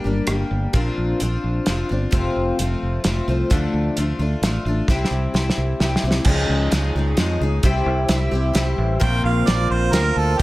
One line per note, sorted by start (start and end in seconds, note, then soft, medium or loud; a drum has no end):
0.04 0.20 G1 medium
0.04 0.26 G3 soft
0.04 0.27 A#3 soft
0.04 0.28 D4 soft
0.04 0.27 G4 soft
0.27 0.42 G1 medium
0.27 0.73 G3 medium
0.27 0.74 A#3 medium
0.27 0.74 D4 medium
0.27 0.75 G4 medium
0.27 cross-stick medium
0.27 closed hi-hat medium
0.51 0.66 G1 medium
0.73 0.89 A#1 medium
0.73 1.20 A#2 medium
0.73 1.20 F3 medium
0.73 1.21 C4 medium
0.73 1.20 D4 medium
0.73 1.23 F4 medium
0.73 kick loud
0.73 closed hi-hat soft
0.98 1.12 A#1 medium
1.20 1.36 A#1 medium
1.20 1.66 F3 medium
1.20 1.67 C4 medium
1.20 1.67 D4 medium
1.20 1.69 F4 medium
1.20 closed hi-hat soft
1.44 1.58 A#1 medium
1.66 1.82 F1 medium
1.66 1.89 F3 medium
1.66 1.90 C4 medium
1.66 1.90 D4 medium
1.66 1.88 F4 medium
1.66 snare medium
1.66 closed hi-hat medium
1.89 2.05 G1 medium
1.89 2.12 C4 soft
1.89 2.13 D4 soft
1.89 2.12 F4 medium
2.11 2.27 F1 medium
2.11 2.58 F2 medium
2.11 2.58 C3 medium
2.11 2.58 F3 medium
2.11 2.59 A3 medium
2.11 2.59 C4 medium
2.11 2.61 F4 medium
2.11 kick loud
2.11 closed hi-hat medium
2.36 2.51 F1 medium
2.59 2.74 F1 medium
2.59 3.03 F3 medium
2.59 3.03 A3 medium
2.59 3.04 C4 medium
2.59 3.05 F4 medium
2.59 closed hi-hat medium
2.83 2.97 F1 medium
3.04 3.20 F1 medium
3.04 3.27 F3 medium
3.04 3.27 A3 medium
3.04 3.28 C4 medium
3.04 3.27 F4 medium
3.04 snare medium
3.04 closed hi-hat medium
3.28 3.42 C2 medium
3.28 3.50 F3 soft
3.28 3.50 A3 soft
3.28 3.51 C4 soft
3.28 3.51 F4 soft
3.50 3.66 D2 medium
3.50 3.96 D3 medium
3.50 3.96 F3 medium
3.50 3.97 A3 medium
3.50 3.97 D4 medium
3.50 3.97 F4 medium
3.50 kick loud
3.50 closed hi-hat medium
3.73 3.88 D2 medium
3.97 4.12 D2 medium
3.97 4.20 F3 medium
3.97 4.20 A3 medium
3.97 4.20 D4 medium
3.97 4.18 F4 medium
3.97 closed hi-hat medium
4.19 4.34 D2 medium
4.19 4.43 A3 soft
4.19 4.43 D4 soft
4.19 4.42 F4 medium
4.42 4.57 A1 medium
4.42 4.66 F3 medium
4.42 4.66 A3 medium
4.42 4.67 D4 medium
4.42 snare medium
4.42 closed hi-hat medium
4.46 4.65 F4 medium
4.65 4.80 A1 medium
4.65 4.89 D4 soft
4.65 4.89 F4 soft
4.70 4.89 A3 soft
4.88 5.03 C2 medium
4.88 5.35 C3 medium
4.88 5.33 G3 medium
4.88 5.33 C4 medium
4.88 5.35 E4 medium
4.88 5.36 G4 medium
4.88 kick medium
4.88 snare medium
5.05 snare soft
5.11 5.26 C2 medium
5.34 5.49 C2 medium
5.34 5.79 G3 medium
5.34 5.80 C4 medium
5.34 5.81 E4 medium
5.34 5.81 G4 medium
5.34 snare medium
5.50 snare medium
5.57 5.72 C2 medium
5.80 5.95 C2 medium
5.80 6.04 G3 medium
5.80 6.04 C4 medium
5.80 6.04 E4 medium
5.80 snare medium
5.84 6.03 G4 medium
5.96 snare medium
6.03 6.18 C2 medium
6.03 6.28 C4 soft
6.03 6.27 E4 soft
6.03 6.27 G4 soft
6.11 snare medium
6.25 6.44 C#2 medium
6.25 6.72 C#3 medium
6.25 6.70 F3 medium
6.25 6.72 G#3 medium
6.25 6.73 D#4 medium
6.25 7.62 F4 medium
6.25 7.63 G#4 medium
6.25 7.62 C#5 medium
6.25 7.62 D#5 medium
6.25 kick loud
6.25 crash loud
6.29 6.74 G#4 medium
6.49 6.67 C#2 medium
6.71 6.90 C#2 medium
6.71 6.95 F3 medium
6.71 6.96 G#3 medium
6.71 6.96 D#4 medium
6.71 6.94 G#4 medium
6.71 snare medium
6.71 closed hi-hat medium
6.95 7.13 C#2 medium
6.95 7.17 G#3 soft
6.95 7.19 D#4 soft
6.95 7.18 G#4 soft
7.17 7.36 F2 medium
7.17 7.41 F3 medium
7.17 7.41 G#3 medium
7.17 7.42 D#4 medium
7.17 snare medium
7.17 closed hi-hat medium
7.21 7.40 G#4 medium
7.40 7.59 C#2 medium
7.40 7.65 G#3 soft
7.40 7.65 D#4 medium
7.40 7.64 G#4 medium
7.63 7.82 C2 medium
7.63 8.10 C3 medium
7.63 8.08 G3 medium
7.63 8.10 C4 medium
7.63 9.00 E4 medium
7.63 8.11 E4 medium
7.63 9.00 G4 medium
7.63 8.11 G4 medium
7.63 8.99 C5 medium
7.63 9.00 E5 medium
7.63 kick loud
7.63 closed hi-hat medium
7.86 8.04 C2 medium
8.09 8.27 C2 medium
8.09 8.33 G3 medium
8.09 8.33 C4 medium
8.09 8.32 E4 medium
8.09 8.30 G4 medium
8.09 snare medium
8.09 closed hi-hat medium
8.31 8.50 C2 medium
8.31 8.54 C4 soft
8.31 8.55 E4 soft
8.31 8.55 G4 medium
8.54 8.73 C2 medium
8.54 9.00 G3 medium
8.54 9.00 C4 medium
8.54 9.01 E4 medium
8.54 9.01 G4 medium
8.54 snare medium
8.54 closed hi-hat medium
8.78 8.96 A1 medium
8.99 9.20 A#1 medium
8.99 9.47 A#2 medium
8.99 9.46 F3 medium
8.99 9.47 A#3 medium
8.99 9.47 C4 loud
8.99 10.37 F4 medium
8.99 9.49 F4 medium
8.99 10.36 A#4 medium
8.99 10.37 C5 medium
8.99 10.37 F5 medium
8.99 9.24 G5 medium
8.99 kick loud
8.99 closed hi-hat medium
9.24 9.42 A#1 medium
9.24 9.49 F5 medium
9.46 9.66 A#1 medium
9.46 9.91 F3 medium
9.46 9.92 A#3 medium
9.46 9.93 C4 medium
9.46 9.94 F4 medium
9.46 9.70 D5 medium
9.46 snare medium
9.46 closed hi-hat medium
9.70 9.88 A#1 medium
9.70 9.94 C5 medium
9.92 10.10 D2 medium
9.92 10.39 F3 medium
9.92 10.39 A#3 medium
9.92 10.40 C4 medium
9.92 10.40 F4 medium
9.92 10.19 A#4 medium
9.92 snare medium
9.92 closed hi-hat medium
10.16 10.34 D2 medium
10.16 10.40 A4 medium
10.37 10.42 F4 medium
10.37 10.42 G4 medium
10.37 10.42 A#4 medium
10.37 10.42 D#5 medium
10.37 10.42 F5 medium